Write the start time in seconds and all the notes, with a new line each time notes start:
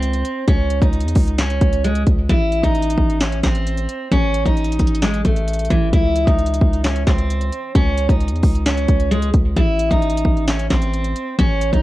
Already playing: C#2 C4
0.03 closed hi-hat
0.13 closed hi-hat
0.25 closed hi-hat
0.48 C#2 C#4, kick, closed hi-hat
0.70 closed hi-hat
0.82 C#2 D#4, kick, closed hi-hat
0.93 closed hi-hat
1.01 E2, closed hi-hat
1.08 closed hi-hat
1.15 C#2, kick, open hi-hat
1.28 closed hi-hat
1.38 C#4, snare, clap, closed hi-hat
1.50 closed hi-hat
1.61 C#2, kick, closed hi-hat
1.73 closed hi-hat
1.84 G#3, closed hi-hat
1.95 closed hi-hat
2.07 C#2, kick, closed hi-hat
2.29 A1 E4, kick, closed hi-hat
2.52 closed hi-hat
2.64 A1 D#4, kick, closed hi-hat
2.75 closed hi-hat
2.83 closed hi-hat
2.90 closed hi-hat
2.98 A1, kick
3.10 closed hi-hat
3.20 C#4, snare, clap, closed hi-hat
3.32 closed hi-hat
3.43 A1 C4, kick, snare, clap, closed hi-hat
3.55 closed hi-hat
3.66 closed hi-hat
3.77 closed hi-hat
3.89 closed hi-hat
4.11 A1 C#4, kick, closed hi-hat
4.34 closed hi-hat
4.45 A1 D#4, kick, closed hi-hat
4.57 closed hi-hat
4.64 closed hi-hat
4.72 closed hi-hat
4.79 A1, kick, closed hi-hat, open hi-hat
4.87 closed hi-hat
4.95 closed hi-hat
5.02 G#3, snare, clap, closed hi-hat
5.14 closed hi-hat
5.25 A1 A3, kick, closed hi-hat
5.36 closed hi-hat
5.48 closed hi-hat
5.54 closed hi-hat
5.59 closed hi-hat
5.65 closed hi-hat
5.70 A1 E3, kick, closed hi-hat
5.93 C#2 E4, kick, closed hi-hat
6.16 closed hi-hat
6.27 C#2 D#4, kick, closed hi-hat
6.39 closed hi-hat
6.46 closed hi-hat
6.54 closed hi-hat
6.61 C#2, kick
6.73 closed hi-hat
6.84 C#4, snare, clap, closed hi-hat
6.96 closed hi-hat
7.07 C#2 C4, kick, snare, clap, closed hi-hat
7.18 closed hi-hat
7.30 closed hi-hat
7.41 closed hi-hat
7.52 closed hi-hat
7.75 C#2 C#4, kick, closed hi-hat
7.98 closed hi-hat
8.09 C#2 D#4, kick, closed hi-hat
8.21 closed hi-hat
8.28 E2, closed hi-hat
8.36 closed hi-hat
8.43 C#2, kick, open hi-hat
8.55 closed hi-hat
8.66 C#4, snare, clap, closed hi-hat
8.77 closed hi-hat
8.88 C#2, kick, closed hi-hat
9.00 closed hi-hat
9.11 G#3, closed hi-hat
9.22 closed hi-hat
9.34 C#2, kick, closed hi-hat
9.57 A1 E4, kick, closed hi-hat
9.79 closed hi-hat
9.91 A1 D#4, kick, closed hi-hat
10.02 closed hi-hat
10.10 closed hi-hat
10.17 closed hi-hat
10.25 A1, kick
10.37 closed hi-hat
10.48 C#4, snare, clap, closed hi-hat
10.59 closed hi-hat
10.70 A1 C4, kick, snare, clap, closed hi-hat
10.82 closed hi-hat
10.93 closed hi-hat
11.04 closed hi-hat
11.16 closed hi-hat
11.39 A1 C#4, kick, closed hi-hat
11.61 closed hi-hat
11.73 A1 D#4, kick, closed hi-hat